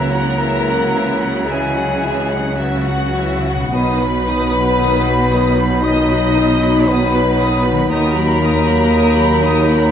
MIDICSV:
0, 0, Header, 1, 12, 480
1, 0, Start_track
1, 0, Key_signature, 5, "major"
1, 0, Tempo, 1088929
1, 1138, Tempo, 1165049
1, 1617, Time_signature, 4, 2, 24, 8
1, 1618, Tempo, 1038062
1, 4469, End_track
2, 0, Start_track
2, 0, Title_t, "Oboe"
2, 0, Program_c, 0, 68
2, 0, Note_on_c, 0, 78, 59
2, 1477, Note_off_c, 0, 78, 0
2, 1618, Note_on_c, 0, 83, 70
2, 3527, Note_off_c, 0, 83, 0
2, 3542, Note_on_c, 0, 83, 70
2, 4469, Note_off_c, 0, 83, 0
2, 4469, End_track
3, 0, Start_track
3, 0, Title_t, "Violin section"
3, 0, Program_c, 1, 48
3, 0, Note_on_c, 1, 76, 49
3, 55, Note_on_c, 1, 78, 47
3, 57, Note_off_c, 1, 76, 0
3, 177, Note_on_c, 1, 76, 49
3, 178, Note_off_c, 1, 78, 0
3, 290, Note_off_c, 1, 76, 0
3, 303, Note_on_c, 1, 78, 51
3, 420, Note_on_c, 1, 76, 50
3, 421, Note_off_c, 1, 78, 0
3, 526, Note_on_c, 1, 78, 52
3, 539, Note_off_c, 1, 76, 0
3, 650, Note_on_c, 1, 76, 51
3, 651, Note_off_c, 1, 78, 0
3, 764, Note_off_c, 1, 76, 0
3, 777, Note_on_c, 1, 78, 52
3, 887, Note_on_c, 1, 76, 50
3, 895, Note_off_c, 1, 78, 0
3, 1008, Note_on_c, 1, 78, 52
3, 1011, Note_off_c, 1, 76, 0
3, 1132, Note_on_c, 1, 76, 57
3, 1134, Note_off_c, 1, 78, 0
3, 1244, Note_off_c, 1, 76, 0
3, 1253, Note_on_c, 1, 78, 54
3, 1376, Note_off_c, 1, 78, 0
3, 1382, Note_on_c, 1, 76, 56
3, 1500, Note_on_c, 1, 78, 49
3, 1502, Note_off_c, 1, 76, 0
3, 1613, Note_on_c, 1, 87, 62
3, 1617, Note_off_c, 1, 78, 0
3, 1732, Note_off_c, 1, 87, 0
3, 1741, Note_on_c, 1, 83, 54
3, 1864, Note_off_c, 1, 83, 0
3, 1864, Note_on_c, 1, 87, 56
3, 1983, Note_on_c, 1, 83, 49
3, 1985, Note_off_c, 1, 87, 0
3, 2104, Note_off_c, 1, 83, 0
3, 2104, Note_on_c, 1, 87, 53
3, 2216, Note_off_c, 1, 87, 0
3, 2221, Note_on_c, 1, 83, 55
3, 2334, Note_on_c, 1, 87, 55
3, 2343, Note_off_c, 1, 83, 0
3, 2460, Note_off_c, 1, 87, 0
3, 2462, Note_on_c, 1, 83, 60
3, 2582, Note_on_c, 1, 87, 59
3, 2585, Note_off_c, 1, 83, 0
3, 2697, Note_off_c, 1, 87, 0
3, 2700, Note_on_c, 1, 83, 53
3, 2819, Note_on_c, 1, 87, 57
3, 2825, Note_off_c, 1, 83, 0
3, 2945, Note_off_c, 1, 87, 0
3, 2946, Note_on_c, 1, 83, 53
3, 3067, Note_off_c, 1, 83, 0
3, 3068, Note_on_c, 1, 87, 62
3, 3179, Note_off_c, 1, 87, 0
3, 3189, Note_on_c, 1, 83, 58
3, 3305, Note_on_c, 1, 87, 57
3, 3307, Note_off_c, 1, 83, 0
3, 3414, Note_on_c, 1, 83, 58
3, 3425, Note_off_c, 1, 87, 0
3, 3539, Note_off_c, 1, 83, 0
3, 3540, Note_on_c, 1, 87, 62
3, 3653, Note_off_c, 1, 87, 0
3, 3664, Note_on_c, 1, 83, 55
3, 3783, Note_off_c, 1, 83, 0
3, 3784, Note_on_c, 1, 87, 60
3, 3891, Note_on_c, 1, 83, 59
3, 3903, Note_off_c, 1, 87, 0
3, 4008, Note_on_c, 1, 87, 62
3, 4016, Note_off_c, 1, 83, 0
3, 4122, Note_on_c, 1, 83, 64
3, 4126, Note_off_c, 1, 87, 0
3, 4251, Note_off_c, 1, 83, 0
3, 4251, Note_on_c, 1, 87, 64
3, 4367, Note_on_c, 1, 83, 63
3, 4375, Note_off_c, 1, 87, 0
3, 4469, Note_off_c, 1, 83, 0
3, 4469, End_track
4, 0, Start_track
4, 0, Title_t, "Flute"
4, 0, Program_c, 2, 73
4, 0, Note_on_c, 2, 82, 84
4, 657, Note_off_c, 2, 82, 0
4, 660, Note_on_c, 2, 80, 72
4, 1001, Note_off_c, 2, 80, 0
4, 1141, Note_on_c, 2, 78, 73
4, 1613, Note_on_c, 2, 83, 91
4, 1619, Note_off_c, 2, 78, 0
4, 2584, Note_on_c, 2, 87, 88
4, 2591, Note_off_c, 2, 83, 0
4, 3064, Note_on_c, 2, 83, 81
4, 3071, Note_off_c, 2, 87, 0
4, 3538, Note_off_c, 2, 83, 0
4, 3540, Note_on_c, 2, 82, 97
4, 4354, Note_off_c, 2, 82, 0
4, 4469, End_track
5, 0, Start_track
5, 0, Title_t, "Violin section"
5, 0, Program_c, 3, 48
5, 0, Note_on_c, 3, 70, 97
5, 643, Note_off_c, 3, 70, 0
5, 655, Note_on_c, 3, 68, 86
5, 1134, Note_on_c, 3, 66, 93
5, 1136, Note_off_c, 3, 68, 0
5, 1616, Note_off_c, 3, 66, 0
5, 1621, Note_on_c, 3, 71, 107
5, 2583, Note_on_c, 3, 75, 103
5, 2589, Note_off_c, 3, 71, 0
5, 3058, Note_off_c, 3, 75, 0
5, 3066, Note_on_c, 3, 71, 100
5, 3538, Note_on_c, 3, 70, 111
5, 3543, Note_off_c, 3, 71, 0
5, 4469, Note_off_c, 3, 70, 0
5, 4469, End_track
6, 0, Start_track
6, 0, Title_t, "Clarinet"
6, 0, Program_c, 4, 71
6, 0, Note_on_c, 4, 64, 61
6, 1476, Note_off_c, 4, 64, 0
6, 1613, Note_on_c, 4, 63, 67
6, 3524, Note_off_c, 4, 63, 0
6, 3546, Note_on_c, 4, 63, 75
6, 4469, Note_off_c, 4, 63, 0
6, 4469, End_track
7, 0, Start_track
7, 0, Title_t, "Harp"
7, 0, Program_c, 5, 46
7, 0, Note_on_c, 5, 49, 51
7, 0, Note_on_c, 5, 54, 44
7, 0, Note_on_c, 5, 64, 45
7, 0, Note_on_c, 5, 66, 49
7, 1316, Note_off_c, 5, 49, 0
7, 1333, Note_off_c, 5, 54, 0
7, 1351, Note_off_c, 5, 64, 0
7, 1370, Note_off_c, 5, 66, 0
7, 1534, Note_on_c, 5, 47, 58
7, 1553, Note_on_c, 5, 59, 47
7, 1571, Note_on_c, 5, 63, 47
7, 1591, Note_on_c, 5, 66, 48
7, 3328, Note_off_c, 5, 47, 0
7, 3349, Note_off_c, 5, 59, 0
7, 3368, Note_off_c, 5, 63, 0
7, 3391, Note_off_c, 5, 66, 0
7, 3453, Note_on_c, 5, 51, 66
7, 3475, Note_on_c, 5, 59, 54
7, 3494, Note_on_c, 5, 63, 52
7, 3515, Note_on_c, 5, 66, 54
7, 4469, Note_off_c, 5, 51, 0
7, 4469, Note_off_c, 5, 59, 0
7, 4469, Note_off_c, 5, 63, 0
7, 4469, Note_off_c, 5, 66, 0
7, 4469, End_track
8, 0, Start_track
8, 0, Title_t, "Viola section"
8, 0, Program_c, 6, 48
8, 0, Note_on_c, 6, 52, 49
8, 0, Note_on_c, 6, 64, 51
8, 57, Note_on_c, 6, 54, 46
8, 58, Note_off_c, 6, 64, 0
8, 59, Note_off_c, 6, 52, 0
8, 61, Note_on_c, 6, 66, 50
8, 179, Note_off_c, 6, 54, 0
8, 181, Note_off_c, 6, 66, 0
8, 182, Note_on_c, 6, 52, 55
8, 186, Note_on_c, 6, 64, 55
8, 293, Note_off_c, 6, 52, 0
8, 295, Note_off_c, 6, 64, 0
8, 303, Note_on_c, 6, 54, 55
8, 304, Note_on_c, 6, 66, 50
8, 421, Note_off_c, 6, 54, 0
8, 421, Note_on_c, 6, 52, 51
8, 422, Note_off_c, 6, 66, 0
8, 422, Note_on_c, 6, 64, 52
8, 536, Note_on_c, 6, 54, 47
8, 536, Note_on_c, 6, 66, 47
8, 539, Note_off_c, 6, 52, 0
8, 540, Note_off_c, 6, 64, 0
8, 653, Note_on_c, 6, 52, 57
8, 654, Note_on_c, 6, 64, 52
8, 656, Note_off_c, 6, 54, 0
8, 656, Note_off_c, 6, 66, 0
8, 765, Note_off_c, 6, 52, 0
8, 766, Note_off_c, 6, 64, 0
8, 773, Note_on_c, 6, 54, 56
8, 776, Note_on_c, 6, 66, 56
8, 893, Note_off_c, 6, 54, 0
8, 895, Note_off_c, 6, 66, 0
8, 896, Note_on_c, 6, 52, 55
8, 898, Note_on_c, 6, 64, 58
8, 1016, Note_off_c, 6, 52, 0
8, 1016, Note_off_c, 6, 64, 0
8, 1016, Note_on_c, 6, 54, 50
8, 1016, Note_on_c, 6, 66, 53
8, 1137, Note_off_c, 6, 54, 0
8, 1138, Note_off_c, 6, 66, 0
8, 1142, Note_on_c, 6, 64, 47
8, 1144, Note_on_c, 6, 52, 47
8, 1249, Note_off_c, 6, 64, 0
8, 1250, Note_off_c, 6, 52, 0
8, 1257, Note_on_c, 6, 54, 49
8, 1258, Note_on_c, 6, 66, 47
8, 1379, Note_off_c, 6, 54, 0
8, 1379, Note_off_c, 6, 66, 0
8, 1379, Note_on_c, 6, 52, 53
8, 1379, Note_on_c, 6, 64, 49
8, 1498, Note_on_c, 6, 54, 52
8, 1499, Note_on_c, 6, 66, 55
8, 1500, Note_off_c, 6, 52, 0
8, 1500, Note_off_c, 6, 64, 0
8, 1610, Note_on_c, 6, 51, 59
8, 1611, Note_on_c, 6, 63, 56
8, 1616, Note_off_c, 6, 54, 0
8, 1616, Note_off_c, 6, 66, 0
8, 1730, Note_off_c, 6, 51, 0
8, 1731, Note_off_c, 6, 63, 0
8, 1733, Note_on_c, 6, 54, 51
8, 1737, Note_on_c, 6, 66, 50
8, 1858, Note_on_c, 6, 63, 55
8, 1860, Note_on_c, 6, 51, 53
8, 1861, Note_off_c, 6, 54, 0
8, 1862, Note_off_c, 6, 66, 0
8, 1981, Note_on_c, 6, 54, 52
8, 1982, Note_off_c, 6, 63, 0
8, 1982, Note_on_c, 6, 66, 56
8, 1983, Note_off_c, 6, 51, 0
8, 2103, Note_off_c, 6, 54, 0
8, 2103, Note_off_c, 6, 66, 0
8, 2103, Note_on_c, 6, 63, 59
8, 2104, Note_on_c, 6, 51, 58
8, 2215, Note_off_c, 6, 63, 0
8, 2216, Note_off_c, 6, 51, 0
8, 2226, Note_on_c, 6, 54, 59
8, 2229, Note_on_c, 6, 66, 56
8, 2344, Note_on_c, 6, 63, 55
8, 2345, Note_off_c, 6, 54, 0
8, 2347, Note_off_c, 6, 66, 0
8, 2347, Note_on_c, 6, 51, 58
8, 2465, Note_off_c, 6, 63, 0
8, 2466, Note_off_c, 6, 51, 0
8, 2471, Note_on_c, 6, 66, 50
8, 2473, Note_on_c, 6, 54, 52
8, 2589, Note_off_c, 6, 66, 0
8, 2589, Note_on_c, 6, 63, 60
8, 2590, Note_off_c, 6, 54, 0
8, 2591, Note_on_c, 6, 51, 56
8, 2701, Note_off_c, 6, 63, 0
8, 2702, Note_off_c, 6, 51, 0
8, 2708, Note_on_c, 6, 66, 59
8, 2709, Note_on_c, 6, 54, 58
8, 2824, Note_on_c, 6, 63, 57
8, 2826, Note_on_c, 6, 51, 59
8, 2829, Note_off_c, 6, 66, 0
8, 2830, Note_off_c, 6, 54, 0
8, 2942, Note_on_c, 6, 66, 57
8, 2944, Note_on_c, 6, 54, 58
8, 2947, Note_off_c, 6, 63, 0
8, 2948, Note_off_c, 6, 51, 0
8, 3065, Note_off_c, 6, 66, 0
8, 3066, Note_off_c, 6, 54, 0
8, 3066, Note_on_c, 6, 63, 53
8, 3067, Note_on_c, 6, 51, 55
8, 3178, Note_off_c, 6, 51, 0
8, 3178, Note_off_c, 6, 63, 0
8, 3190, Note_on_c, 6, 66, 58
8, 3194, Note_on_c, 6, 54, 53
8, 3307, Note_off_c, 6, 66, 0
8, 3309, Note_off_c, 6, 54, 0
8, 3312, Note_on_c, 6, 63, 61
8, 3316, Note_on_c, 6, 51, 60
8, 3426, Note_on_c, 6, 66, 62
8, 3427, Note_on_c, 6, 54, 56
8, 3428, Note_off_c, 6, 63, 0
8, 3430, Note_off_c, 6, 51, 0
8, 3545, Note_off_c, 6, 66, 0
8, 3546, Note_off_c, 6, 54, 0
8, 3547, Note_on_c, 6, 63, 59
8, 3549, Note_on_c, 6, 51, 66
8, 3655, Note_on_c, 6, 54, 57
8, 3656, Note_on_c, 6, 66, 53
8, 3657, Note_off_c, 6, 63, 0
8, 3658, Note_off_c, 6, 51, 0
8, 3775, Note_on_c, 6, 63, 59
8, 3778, Note_on_c, 6, 51, 63
8, 3779, Note_off_c, 6, 54, 0
8, 3779, Note_off_c, 6, 66, 0
8, 3892, Note_on_c, 6, 66, 57
8, 3894, Note_on_c, 6, 54, 59
8, 3898, Note_off_c, 6, 63, 0
8, 3900, Note_off_c, 6, 51, 0
8, 4005, Note_on_c, 6, 51, 63
8, 4008, Note_on_c, 6, 63, 64
8, 4017, Note_off_c, 6, 66, 0
8, 4018, Note_off_c, 6, 54, 0
8, 4124, Note_off_c, 6, 51, 0
8, 4126, Note_off_c, 6, 63, 0
8, 4130, Note_on_c, 6, 54, 59
8, 4134, Note_on_c, 6, 66, 61
8, 4246, Note_on_c, 6, 63, 64
8, 4247, Note_on_c, 6, 51, 60
8, 4255, Note_off_c, 6, 54, 0
8, 4257, Note_off_c, 6, 66, 0
8, 4365, Note_on_c, 6, 66, 61
8, 4366, Note_on_c, 6, 54, 59
8, 4373, Note_off_c, 6, 51, 0
8, 4373, Note_off_c, 6, 63, 0
8, 4469, Note_off_c, 6, 54, 0
8, 4469, Note_off_c, 6, 66, 0
8, 4469, End_track
9, 0, Start_track
9, 0, Title_t, "French horn section"
9, 0, Program_c, 7, 60
9, 0, Note_on_c, 7, 58, 74
9, 637, Note_off_c, 7, 58, 0
9, 640, Note_on_c, 7, 56, 77
9, 1129, Note_off_c, 7, 56, 0
9, 1131, Note_on_c, 7, 54, 76
9, 1531, Note_off_c, 7, 54, 0
9, 1601, Note_on_c, 7, 59, 90
9, 2559, Note_off_c, 7, 59, 0
9, 2576, Note_on_c, 7, 63, 99
9, 3061, Note_on_c, 7, 59, 89
9, 3064, Note_off_c, 7, 63, 0
9, 3541, Note_off_c, 7, 59, 0
9, 3543, Note_on_c, 7, 58, 93
9, 4469, Note_off_c, 7, 58, 0
9, 4469, End_track
10, 0, Start_track
10, 0, Title_t, "Bassoon"
10, 0, Program_c, 8, 70
10, 0, Note_on_c, 8, 54, 61
10, 1474, Note_off_c, 8, 54, 0
10, 1611, Note_on_c, 8, 54, 60
10, 3523, Note_off_c, 8, 54, 0
10, 3543, Note_on_c, 8, 54, 70
10, 4469, Note_off_c, 8, 54, 0
10, 4469, End_track
11, 0, Start_track
11, 0, Title_t, "Cello section"
11, 0, Program_c, 10, 48
11, 0, Note_on_c, 10, 49, 64
11, 1601, Note_off_c, 10, 49, 0
11, 1614, Note_on_c, 10, 47, 67
11, 3525, Note_off_c, 10, 47, 0
11, 3537, Note_on_c, 10, 39, 78
11, 4469, Note_off_c, 10, 39, 0
11, 4469, End_track
12, 0, Start_track
12, 0, Title_t, "Double bass section"
12, 0, Program_c, 11, 48
12, 0, Note_on_c, 11, 37, 62
12, 1600, Note_off_c, 11, 37, 0
12, 1612, Note_on_c, 11, 35, 68
12, 3523, Note_off_c, 11, 35, 0
12, 3541, Note_on_c, 11, 39, 75
12, 4469, Note_off_c, 11, 39, 0
12, 4469, End_track
0, 0, End_of_file